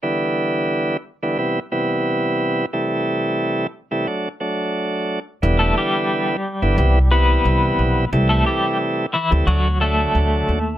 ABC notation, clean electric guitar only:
X:1
M:4/4
L:1/16
Q:"Swing 16ths" 1/4=89
K:Em
V:1 name="Clean electric guitar"
z16 | z16 | z [A,A] [G,G]8 [B,B]6 | z [A,A] [G,G]2 z2 [E,E] z [F,F]2 [A,A]6 |]